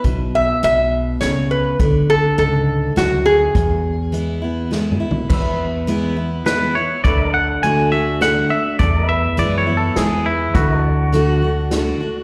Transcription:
0.04 B1 B2, kick, closed hi-hat
0.35 E5
0.63 B1 B2 E5, closed hi-hat
1.21 C#2 C#3 C#5, snare, closed hi-hat
1.51 B4
1.79 D2 D3, kick, closed hi-hat
2.10 A4
2.38 C#2 G#2 A4, closed hi-hat
2.96 D2 F#2 F#4, snare, closed hi-hat
3.26 G#4
3.55 E2, kick, closed hi-hat
4.12 E3 G#3 B3 E4, closed hi-hat
4.42 B3 E4
4.71 E3 G#3 B3 E4, snare
4.91 mid tom
5.00 B3 E4
5.11 floor tom
5.30 E2 B4 E5, kick, crash
5.87 E3 G#3 B3 E4, closed hi-hat
6.17 B3 E4
6.46 E3 G#3 B3 E4 B4, snare, closed hi-hat
6.75 B3 E4 C#5
7.04 D2 D3 B4 D5 E5, kick, closed hi-hat
7.31 A4 D5 F#5
7.63 D3 A3 D4 F#4 G#5, closed hi-hat
7.92 D4 F#4 E5
8.21 D3 A3 D4 F#4 F#5, snare, closed hi-hat
8.50 D4 F#4 E5
8.79 E2 A4 D5, kick, closed hi-hat
9.06 B4 E5
9.37 F#2 E3 G#3 B3 E4 D5, closed hi-hat
9.58 C#5
9.67 B3 E4
9.77 A4
9.96 E2 E3 G#3 B3 E4 G#4, snare, closed hi-hat
10.26 E4
10.54 D2 D3 F#4 B4 E5, kick, closed hi-hat
10.79 A4 D5
11.12 D3 A3 D4 F#4, closed hi-hat
11.42 D4 F#4
11.71 D3 A3 D4 F#4, snare, closed hi-hat
12.01 D4 F#4

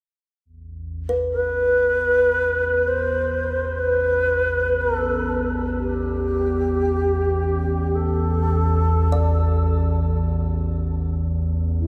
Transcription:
0.45 A1 E2
1.09 B4
1.30 B4
2.87 C5
3.78 B4
4.80 A4
5.79 G4
7.95 A4
9.12 D5
11.80 E4

